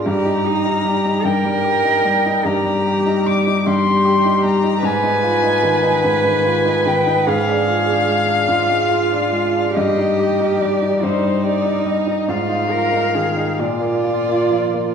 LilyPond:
<<
  \new Staff \with { instrumentName = "Violin" } { \time 12/8 \key ees \major \tempo 4. = 49 bes''4. g''4. bes''4 d'''8 c'''4 bes''8 | aes''4. aes''4 g''8 f''2. | ees''4 d''8 c''8 d''8 ees''8 f''4. d''4. | }
  \new Staff \with { instrumentName = "Cello" } { \time 12/8 \key ees \major g'8 ees'8 g'8 bes'4. g'4. g'4. | ces''2. aes'4. f'4. | g'4. ees'4. f'8 bes'8 aes'8 f'4. | }
  \new Staff \with { instrumentName = "Grand piano" } { \time 12/8 \key ees \major g,16 ees'16 g'16 ees'16 g16 ees'16 g,16 g16 g'16 ees'16 g16 ees'16 g,16 g16 g'16 ees'16 g16 ees'16 g,16 g16 g'16 ees'16 g16 ees'16 | aes,16 ees'16 f'16 ees'16 ees16 ees'16 aes,16 ees16 f'16 ees'16 ees16 ees'16 aes,16 d'16 f'16 d'16 aes16 d'16 aes,16 aes16 f'16 d'16 aes16 d'16 | g,16 ees'16 g'16 ees'16 g16 ees'16 g,16 g16 g'16 ees'16 g16 ees'16 aes,16 ees'16 f'16 ees'16 ees16 ees'16 bes,16 bes16 f'16 bes16 f16 bes16 | }
>>